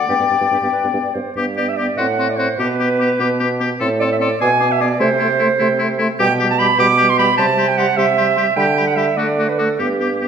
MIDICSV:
0, 0, Header, 1, 6, 480
1, 0, Start_track
1, 0, Key_signature, 1, "major"
1, 0, Tempo, 418994
1, 109, Time_signature, 6, 3, 24, 8
1, 2506, Tempo, 402685
1, 5866, Tempo, 396040
1, 10666, Tempo, 417246
1, 12176, End_track
2, 0, Start_track
2, 0, Title_t, "Flute"
2, 0, Program_c, 0, 73
2, 104, Note_on_c, 0, 79, 61
2, 1296, Note_off_c, 0, 79, 0
2, 1570, Note_on_c, 0, 86, 48
2, 1639, Note_off_c, 0, 86, 0
2, 1815, Note_on_c, 0, 86, 38
2, 1883, Note_off_c, 0, 86, 0
2, 2047, Note_on_c, 0, 86, 40
2, 2116, Note_off_c, 0, 86, 0
2, 2277, Note_on_c, 0, 84, 42
2, 2346, Note_off_c, 0, 84, 0
2, 2508, Note_on_c, 0, 84, 40
2, 2579, Note_off_c, 0, 84, 0
2, 2753, Note_on_c, 0, 84, 41
2, 2825, Note_off_c, 0, 84, 0
2, 2992, Note_on_c, 0, 86, 50
2, 3064, Note_off_c, 0, 86, 0
2, 3233, Note_on_c, 0, 86, 42
2, 3304, Note_off_c, 0, 86, 0
2, 3466, Note_on_c, 0, 86, 45
2, 3538, Note_off_c, 0, 86, 0
2, 3716, Note_on_c, 0, 86, 50
2, 3788, Note_off_c, 0, 86, 0
2, 3955, Note_on_c, 0, 86, 47
2, 4026, Note_off_c, 0, 86, 0
2, 4187, Note_on_c, 0, 86, 45
2, 4258, Note_off_c, 0, 86, 0
2, 4439, Note_on_c, 0, 84, 55
2, 4510, Note_off_c, 0, 84, 0
2, 4682, Note_on_c, 0, 84, 45
2, 4753, Note_off_c, 0, 84, 0
2, 4919, Note_on_c, 0, 84, 54
2, 4991, Note_off_c, 0, 84, 0
2, 5157, Note_on_c, 0, 86, 52
2, 5229, Note_off_c, 0, 86, 0
2, 5385, Note_on_c, 0, 86, 51
2, 5456, Note_off_c, 0, 86, 0
2, 5622, Note_on_c, 0, 86, 57
2, 5693, Note_off_c, 0, 86, 0
2, 5855, Note_on_c, 0, 84, 63
2, 5928, Note_off_c, 0, 84, 0
2, 6113, Note_on_c, 0, 84, 54
2, 6185, Note_off_c, 0, 84, 0
2, 6359, Note_on_c, 0, 84, 60
2, 6432, Note_off_c, 0, 84, 0
2, 6608, Note_on_c, 0, 84, 62
2, 6680, Note_off_c, 0, 84, 0
2, 6836, Note_on_c, 0, 84, 57
2, 6909, Note_off_c, 0, 84, 0
2, 7087, Note_on_c, 0, 84, 58
2, 7160, Note_off_c, 0, 84, 0
2, 7308, Note_on_c, 0, 86, 66
2, 7381, Note_off_c, 0, 86, 0
2, 7565, Note_on_c, 0, 86, 55
2, 7638, Note_off_c, 0, 86, 0
2, 7815, Note_on_c, 0, 86, 61
2, 7888, Note_off_c, 0, 86, 0
2, 8043, Note_on_c, 0, 86, 62
2, 8116, Note_off_c, 0, 86, 0
2, 8270, Note_on_c, 0, 86, 54
2, 8343, Note_off_c, 0, 86, 0
2, 8532, Note_on_c, 0, 86, 55
2, 8605, Note_off_c, 0, 86, 0
2, 8764, Note_on_c, 0, 84, 63
2, 8836, Note_off_c, 0, 84, 0
2, 8994, Note_on_c, 0, 84, 51
2, 9067, Note_off_c, 0, 84, 0
2, 9240, Note_on_c, 0, 84, 52
2, 9313, Note_off_c, 0, 84, 0
2, 9475, Note_on_c, 0, 84, 53
2, 9548, Note_off_c, 0, 84, 0
2, 9711, Note_on_c, 0, 84, 51
2, 9784, Note_off_c, 0, 84, 0
2, 9933, Note_on_c, 0, 84, 51
2, 10006, Note_off_c, 0, 84, 0
2, 10187, Note_on_c, 0, 83, 57
2, 10260, Note_off_c, 0, 83, 0
2, 10430, Note_on_c, 0, 83, 47
2, 10503, Note_off_c, 0, 83, 0
2, 10672, Note_on_c, 0, 83, 46
2, 10741, Note_off_c, 0, 83, 0
2, 10900, Note_on_c, 0, 86, 46
2, 10969, Note_off_c, 0, 86, 0
2, 11143, Note_on_c, 0, 86, 37
2, 11212, Note_off_c, 0, 86, 0
2, 11379, Note_on_c, 0, 86, 38
2, 11448, Note_off_c, 0, 86, 0
2, 11629, Note_on_c, 0, 86, 41
2, 11698, Note_off_c, 0, 86, 0
2, 11877, Note_on_c, 0, 86, 34
2, 11946, Note_off_c, 0, 86, 0
2, 12126, Note_on_c, 0, 86, 36
2, 12176, Note_off_c, 0, 86, 0
2, 12176, End_track
3, 0, Start_track
3, 0, Title_t, "Clarinet"
3, 0, Program_c, 1, 71
3, 103, Note_on_c, 1, 67, 48
3, 159, Note_off_c, 1, 67, 0
3, 235, Note_on_c, 1, 67, 32
3, 289, Note_off_c, 1, 67, 0
3, 371, Note_on_c, 1, 67, 31
3, 422, Note_off_c, 1, 67, 0
3, 500, Note_on_c, 1, 67, 33
3, 549, Note_off_c, 1, 67, 0
3, 614, Note_on_c, 1, 67, 48
3, 665, Note_off_c, 1, 67, 0
3, 731, Note_on_c, 1, 67, 37
3, 782, Note_off_c, 1, 67, 0
3, 832, Note_on_c, 1, 71, 41
3, 997, Note_off_c, 1, 71, 0
3, 1207, Note_on_c, 1, 74, 41
3, 1310, Note_on_c, 1, 72, 38
3, 1327, Note_off_c, 1, 74, 0
3, 1557, Note_off_c, 1, 72, 0
3, 1804, Note_on_c, 1, 74, 61
3, 1934, Note_on_c, 1, 76, 60
3, 1951, Note_off_c, 1, 74, 0
3, 2021, Note_on_c, 1, 74, 61
3, 2038, Note_off_c, 1, 76, 0
3, 2267, Note_on_c, 1, 78, 72
3, 2284, Note_off_c, 1, 74, 0
3, 2638, Note_on_c, 1, 74, 61
3, 2655, Note_off_c, 1, 78, 0
3, 2724, Note_on_c, 1, 72, 56
3, 2742, Note_off_c, 1, 74, 0
3, 2979, Note_on_c, 1, 71, 67
3, 2997, Note_off_c, 1, 72, 0
3, 4190, Note_off_c, 1, 71, 0
3, 4660, Note_on_c, 1, 74, 69
3, 4717, Note_off_c, 1, 74, 0
3, 4808, Note_on_c, 1, 76, 62
3, 4858, Note_off_c, 1, 76, 0
3, 4920, Note_on_c, 1, 74, 69
3, 5148, Note_off_c, 1, 74, 0
3, 5159, Note_on_c, 1, 80, 89
3, 5524, Note_on_c, 1, 76, 74
3, 5542, Note_off_c, 1, 80, 0
3, 5630, Note_on_c, 1, 74, 73
3, 5647, Note_off_c, 1, 76, 0
3, 5866, Note_off_c, 1, 74, 0
3, 5874, Note_on_c, 1, 72, 81
3, 7045, Note_off_c, 1, 72, 0
3, 7313, Note_on_c, 1, 79, 96
3, 7473, Note_off_c, 1, 79, 0
3, 7680, Note_on_c, 1, 81, 82
3, 7784, Note_on_c, 1, 83, 92
3, 7802, Note_off_c, 1, 81, 0
3, 8024, Note_off_c, 1, 83, 0
3, 8035, Note_on_c, 1, 86, 98
3, 8397, Note_on_c, 1, 84, 87
3, 8415, Note_off_c, 1, 86, 0
3, 8504, Note_off_c, 1, 84, 0
3, 8511, Note_on_c, 1, 83, 94
3, 8729, Note_off_c, 1, 83, 0
3, 8736, Note_on_c, 1, 81, 88
3, 9113, Note_on_c, 1, 79, 78
3, 9131, Note_off_c, 1, 81, 0
3, 9224, Note_on_c, 1, 78, 80
3, 9242, Note_off_c, 1, 79, 0
3, 9451, Note_on_c, 1, 76, 85
3, 9470, Note_off_c, 1, 78, 0
3, 10167, Note_off_c, 1, 76, 0
3, 10175, Note_on_c, 1, 79, 81
3, 10533, Note_off_c, 1, 79, 0
3, 10546, Note_on_c, 1, 78, 66
3, 10657, Note_on_c, 1, 76, 63
3, 10675, Note_off_c, 1, 78, 0
3, 10899, Note_on_c, 1, 74, 69
3, 10916, Note_off_c, 1, 76, 0
3, 11265, Note_on_c, 1, 71, 53
3, 11282, Note_off_c, 1, 74, 0
3, 11381, Note_on_c, 1, 69, 51
3, 11398, Note_off_c, 1, 71, 0
3, 11620, Note_on_c, 1, 67, 55
3, 11638, Note_off_c, 1, 69, 0
3, 12176, Note_off_c, 1, 67, 0
3, 12176, End_track
4, 0, Start_track
4, 0, Title_t, "Oboe"
4, 0, Program_c, 2, 68
4, 0, Note_on_c, 2, 74, 58
4, 1315, Note_off_c, 2, 74, 0
4, 1558, Note_on_c, 2, 67, 44
4, 1666, Note_off_c, 2, 67, 0
4, 1800, Note_on_c, 2, 67, 44
4, 1907, Note_off_c, 2, 67, 0
4, 2035, Note_on_c, 2, 67, 40
4, 2141, Note_off_c, 2, 67, 0
4, 2263, Note_on_c, 2, 66, 45
4, 2370, Note_off_c, 2, 66, 0
4, 2508, Note_on_c, 2, 66, 45
4, 2616, Note_off_c, 2, 66, 0
4, 2746, Note_on_c, 2, 66, 43
4, 2853, Note_off_c, 2, 66, 0
4, 2990, Note_on_c, 2, 67, 46
4, 3097, Note_off_c, 2, 67, 0
4, 3229, Note_on_c, 2, 67, 44
4, 3337, Note_off_c, 2, 67, 0
4, 3477, Note_on_c, 2, 67, 44
4, 3584, Note_off_c, 2, 67, 0
4, 3699, Note_on_c, 2, 67, 49
4, 3810, Note_off_c, 2, 67, 0
4, 3947, Note_on_c, 2, 67, 48
4, 4056, Note_off_c, 2, 67, 0
4, 4194, Note_on_c, 2, 67, 47
4, 4302, Note_off_c, 2, 67, 0
4, 4430, Note_on_c, 2, 69, 53
4, 4538, Note_off_c, 2, 69, 0
4, 4680, Note_on_c, 2, 69, 49
4, 4785, Note_off_c, 2, 69, 0
4, 4913, Note_on_c, 2, 69, 53
4, 5020, Note_off_c, 2, 69, 0
4, 5149, Note_on_c, 2, 68, 54
4, 5256, Note_off_c, 2, 68, 0
4, 5381, Note_on_c, 2, 68, 51
4, 5490, Note_off_c, 2, 68, 0
4, 5617, Note_on_c, 2, 68, 52
4, 5726, Note_off_c, 2, 68, 0
4, 5851, Note_on_c, 2, 64, 59
4, 5962, Note_off_c, 2, 64, 0
4, 6084, Note_on_c, 2, 64, 55
4, 6197, Note_off_c, 2, 64, 0
4, 6330, Note_on_c, 2, 64, 54
4, 6442, Note_off_c, 2, 64, 0
4, 6569, Note_on_c, 2, 64, 60
4, 6681, Note_off_c, 2, 64, 0
4, 6813, Note_on_c, 2, 64, 58
4, 6923, Note_off_c, 2, 64, 0
4, 7054, Note_on_c, 2, 64, 60
4, 7164, Note_off_c, 2, 64, 0
4, 7301, Note_on_c, 2, 67, 64
4, 7409, Note_off_c, 2, 67, 0
4, 7545, Note_on_c, 2, 67, 62
4, 7653, Note_off_c, 2, 67, 0
4, 7778, Note_on_c, 2, 67, 58
4, 7888, Note_off_c, 2, 67, 0
4, 8013, Note_on_c, 2, 67, 61
4, 8124, Note_off_c, 2, 67, 0
4, 8254, Note_on_c, 2, 67, 57
4, 8364, Note_off_c, 2, 67, 0
4, 8489, Note_on_c, 2, 67, 57
4, 8600, Note_off_c, 2, 67, 0
4, 8730, Note_on_c, 2, 67, 62
4, 8841, Note_off_c, 2, 67, 0
4, 8983, Note_on_c, 2, 67, 58
4, 9091, Note_off_c, 2, 67, 0
4, 9223, Note_on_c, 2, 67, 52
4, 9331, Note_off_c, 2, 67, 0
4, 9468, Note_on_c, 2, 67, 56
4, 9574, Note_off_c, 2, 67, 0
4, 9706, Note_on_c, 2, 67, 52
4, 9813, Note_off_c, 2, 67, 0
4, 9949, Note_on_c, 2, 67, 50
4, 10055, Note_off_c, 2, 67, 0
4, 10204, Note_on_c, 2, 67, 57
4, 10307, Note_off_c, 2, 67, 0
4, 10428, Note_on_c, 2, 67, 47
4, 10536, Note_off_c, 2, 67, 0
4, 10674, Note_on_c, 2, 67, 45
4, 10778, Note_off_c, 2, 67, 0
4, 10914, Note_on_c, 2, 66, 46
4, 11018, Note_off_c, 2, 66, 0
4, 11150, Note_on_c, 2, 66, 41
4, 11254, Note_off_c, 2, 66, 0
4, 11381, Note_on_c, 2, 66, 38
4, 11489, Note_off_c, 2, 66, 0
4, 11615, Note_on_c, 2, 67, 40
4, 11725, Note_off_c, 2, 67, 0
4, 11859, Note_on_c, 2, 67, 36
4, 11969, Note_off_c, 2, 67, 0
4, 12093, Note_on_c, 2, 67, 34
4, 12176, Note_off_c, 2, 67, 0
4, 12176, End_track
5, 0, Start_track
5, 0, Title_t, "French horn"
5, 0, Program_c, 3, 60
5, 100, Note_on_c, 3, 59, 47
5, 158, Note_off_c, 3, 59, 0
5, 226, Note_on_c, 3, 59, 32
5, 283, Note_off_c, 3, 59, 0
5, 339, Note_on_c, 3, 59, 33
5, 397, Note_off_c, 3, 59, 0
5, 465, Note_on_c, 3, 59, 30
5, 522, Note_off_c, 3, 59, 0
5, 585, Note_on_c, 3, 59, 46
5, 642, Note_off_c, 3, 59, 0
5, 717, Note_on_c, 3, 59, 30
5, 771, Note_off_c, 3, 59, 0
5, 966, Note_on_c, 3, 59, 33
5, 1019, Note_off_c, 3, 59, 0
5, 1072, Note_on_c, 3, 59, 46
5, 1128, Note_off_c, 3, 59, 0
5, 1315, Note_on_c, 3, 59, 33
5, 1371, Note_off_c, 3, 59, 0
5, 1575, Note_on_c, 3, 59, 47
5, 1679, Note_off_c, 3, 59, 0
5, 1811, Note_on_c, 3, 59, 39
5, 1916, Note_off_c, 3, 59, 0
5, 2043, Note_on_c, 3, 59, 43
5, 2147, Note_off_c, 3, 59, 0
5, 2276, Note_on_c, 3, 60, 44
5, 2380, Note_off_c, 3, 60, 0
5, 2498, Note_on_c, 3, 60, 43
5, 2608, Note_off_c, 3, 60, 0
5, 2742, Note_on_c, 3, 60, 46
5, 2850, Note_off_c, 3, 60, 0
5, 2989, Note_on_c, 3, 59, 50
5, 3096, Note_off_c, 3, 59, 0
5, 3228, Note_on_c, 3, 59, 45
5, 3336, Note_off_c, 3, 59, 0
5, 3455, Note_on_c, 3, 59, 45
5, 3567, Note_off_c, 3, 59, 0
5, 3707, Note_on_c, 3, 59, 51
5, 3817, Note_off_c, 3, 59, 0
5, 3952, Note_on_c, 3, 59, 44
5, 4061, Note_off_c, 3, 59, 0
5, 4191, Note_on_c, 3, 59, 47
5, 4300, Note_off_c, 3, 59, 0
5, 4429, Note_on_c, 3, 60, 58
5, 4538, Note_off_c, 3, 60, 0
5, 4677, Note_on_c, 3, 60, 48
5, 4783, Note_off_c, 3, 60, 0
5, 4903, Note_on_c, 3, 60, 50
5, 5012, Note_off_c, 3, 60, 0
5, 5149, Note_on_c, 3, 59, 55
5, 5256, Note_off_c, 3, 59, 0
5, 5396, Note_on_c, 3, 59, 54
5, 5501, Note_off_c, 3, 59, 0
5, 5625, Note_on_c, 3, 59, 57
5, 5733, Note_off_c, 3, 59, 0
5, 5861, Note_on_c, 3, 57, 67
5, 5970, Note_off_c, 3, 57, 0
5, 6107, Note_on_c, 3, 57, 53
5, 6215, Note_off_c, 3, 57, 0
5, 6342, Note_on_c, 3, 57, 57
5, 6451, Note_off_c, 3, 57, 0
5, 6579, Note_on_c, 3, 57, 59
5, 6688, Note_off_c, 3, 57, 0
5, 6824, Note_on_c, 3, 57, 57
5, 6932, Note_off_c, 3, 57, 0
5, 7054, Note_on_c, 3, 57, 61
5, 7164, Note_off_c, 3, 57, 0
5, 7304, Note_on_c, 3, 55, 67
5, 7412, Note_off_c, 3, 55, 0
5, 7548, Note_on_c, 3, 55, 58
5, 7655, Note_off_c, 3, 55, 0
5, 7792, Note_on_c, 3, 55, 59
5, 7898, Note_off_c, 3, 55, 0
5, 8034, Note_on_c, 3, 55, 61
5, 8140, Note_off_c, 3, 55, 0
5, 8272, Note_on_c, 3, 55, 58
5, 8378, Note_off_c, 3, 55, 0
5, 8508, Note_on_c, 3, 55, 56
5, 8615, Note_off_c, 3, 55, 0
5, 8750, Note_on_c, 3, 55, 62
5, 8856, Note_off_c, 3, 55, 0
5, 8978, Note_on_c, 3, 55, 52
5, 9087, Note_off_c, 3, 55, 0
5, 9226, Note_on_c, 3, 55, 53
5, 9332, Note_off_c, 3, 55, 0
5, 9465, Note_on_c, 3, 55, 55
5, 9572, Note_off_c, 3, 55, 0
5, 9703, Note_on_c, 3, 55, 50
5, 9810, Note_off_c, 3, 55, 0
5, 9944, Note_on_c, 3, 55, 49
5, 10051, Note_off_c, 3, 55, 0
5, 10176, Note_on_c, 3, 55, 57
5, 10286, Note_off_c, 3, 55, 0
5, 10422, Note_on_c, 3, 55, 47
5, 10532, Note_off_c, 3, 55, 0
5, 10658, Note_on_c, 3, 55, 43
5, 10766, Note_off_c, 3, 55, 0
5, 10894, Note_on_c, 3, 57, 43
5, 11002, Note_off_c, 3, 57, 0
5, 11135, Note_on_c, 3, 57, 42
5, 11243, Note_off_c, 3, 57, 0
5, 11369, Note_on_c, 3, 57, 40
5, 11479, Note_off_c, 3, 57, 0
5, 11615, Note_on_c, 3, 59, 43
5, 11725, Note_off_c, 3, 59, 0
5, 11856, Note_on_c, 3, 59, 38
5, 11967, Note_off_c, 3, 59, 0
5, 12106, Note_on_c, 3, 59, 35
5, 12176, Note_off_c, 3, 59, 0
5, 12176, End_track
6, 0, Start_track
6, 0, Title_t, "Bassoon"
6, 0, Program_c, 4, 70
6, 105, Note_on_c, 4, 43, 52
6, 161, Note_off_c, 4, 43, 0
6, 233, Note_on_c, 4, 43, 32
6, 287, Note_off_c, 4, 43, 0
6, 348, Note_on_c, 4, 43, 33
6, 405, Note_off_c, 4, 43, 0
6, 466, Note_on_c, 4, 43, 34
6, 523, Note_off_c, 4, 43, 0
6, 593, Note_on_c, 4, 43, 48
6, 648, Note_off_c, 4, 43, 0
6, 711, Note_on_c, 4, 43, 34
6, 767, Note_off_c, 4, 43, 0
6, 961, Note_on_c, 4, 43, 32
6, 1015, Note_off_c, 4, 43, 0
6, 1072, Note_on_c, 4, 43, 49
6, 1128, Note_off_c, 4, 43, 0
6, 1321, Note_on_c, 4, 43, 32
6, 1376, Note_off_c, 4, 43, 0
6, 1562, Note_on_c, 4, 43, 54
6, 2189, Note_off_c, 4, 43, 0
6, 2265, Note_on_c, 4, 45, 53
6, 2897, Note_off_c, 4, 45, 0
6, 2978, Note_on_c, 4, 47, 58
6, 3620, Note_off_c, 4, 47, 0
6, 3709, Note_on_c, 4, 47, 58
6, 4348, Note_off_c, 4, 47, 0
6, 4436, Note_on_c, 4, 45, 62
6, 5065, Note_off_c, 4, 45, 0
6, 5165, Note_on_c, 4, 47, 70
6, 5788, Note_off_c, 4, 47, 0
6, 5864, Note_on_c, 4, 48, 70
6, 6500, Note_off_c, 4, 48, 0
6, 6597, Note_on_c, 4, 48, 69
6, 7225, Note_off_c, 4, 48, 0
6, 7312, Note_on_c, 4, 47, 77
6, 7944, Note_off_c, 4, 47, 0
6, 8023, Note_on_c, 4, 47, 72
6, 8659, Note_off_c, 4, 47, 0
6, 8752, Note_on_c, 4, 48, 75
6, 9380, Note_off_c, 4, 48, 0
6, 9462, Note_on_c, 4, 48, 67
6, 9996, Note_off_c, 4, 48, 0
6, 10186, Note_on_c, 4, 50, 69
6, 10821, Note_off_c, 4, 50, 0
6, 10897, Note_on_c, 4, 50, 58
6, 11530, Note_off_c, 4, 50, 0
6, 11620, Note_on_c, 4, 43, 49
6, 12176, Note_off_c, 4, 43, 0
6, 12176, End_track
0, 0, End_of_file